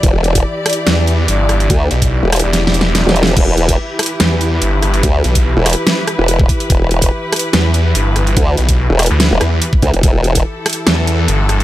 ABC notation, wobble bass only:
X:1
M:4/4
L:1/16
Q:"Swing 16ths" 1/4=144
K:Em
V:1 name="Wobble bass" clef=bass
E,,,4 z12 | D,,2 z3 E,,,2 z6 E,,,3 | E,,,4 z12 | D,,2 z3 E,,,2 z4 E,,,3 z2 |
E,,,4 z12 | D,,2 z3 E,,,2 z2 E,,, z4 D,, E,,, | E,,,4 z12 |]